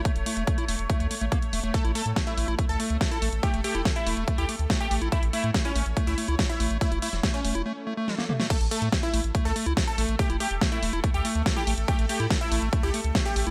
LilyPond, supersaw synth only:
\new Staff \with { instrumentName = "Supersaw synth" } { \time 4/4 \key a \major \tempo 4 = 142 r1 | a'16 r16 a'16 r8 e'8 r8 a'16 r8. a'16 r8 | g'16 r16 g'16 r8 e'8 r8 g'16 r8. g'16 r8 | e'16 r16 e'16 r8 cis'8 r8 e'16 r8. e'16 r8 |
e'16 r16 e'16 r8 cis'8 r2 r16 | a'16 r16 a'16 r8 e'8 r8 a'16 r8. a'16 r8 | g'16 r16 g'16 r8 e'8 r8 g'16 r8. g'16 r8 | g'16 r16 g'16 r8 e'8 r8 g'16 r8. g'16 r8 | }